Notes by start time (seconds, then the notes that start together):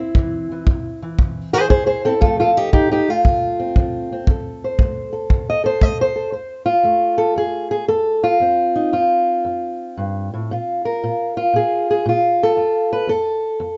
Already playing: G3 E4
0.00 C4
0.15 C3 E3, kick
0.52 E3
0.67 E3, kick
1.02 E3
1.18 C3, kick
1.53 E4 G#4 C5
1.70 E3 G#4 C5, kick
1.86 G#4 C5
2.05 C4 E4 A4
2.21 F2 F3 F4 A4, kick
2.25 A3 C4
2.40 F4 A4
2.57 D#4 G4
2.73 F3 D#4 G4, kick
2.91 D#4 G4
3.08 A3 F4
3.25 C3, kick
3.60 C4
3.76 F3, kick
4.12 C4
4.27 F2 A4, kick
4.64 C5
4.79 A3, kick
5.13 A4
5.30 F2, kick
5.50 D#5
5.64 A4 C5
5.81 A3 D#5, kick
6.01 C5
6.16 A4
6.32 F2 C5
6.66 F4
6.83 F2 A3
7.18 A4
7.36 F2 G#4
7.71 G#4
7.88 F2 A4
8.24 F4
8.40 F2 C4
8.76 D#4
8.93 F2 F4
9.45 F2
9.97 G2
10.34 A2
10.51 A#2 F4
10.85 A#4
11.04 A#2 F4
11.37 F4
11.53 A#2 G#4
11.91 G#4
12.06 A#2 F4
12.43 A4
12.57 F2 F4
12.93 B4
13.07 F2 A4
13.60 F2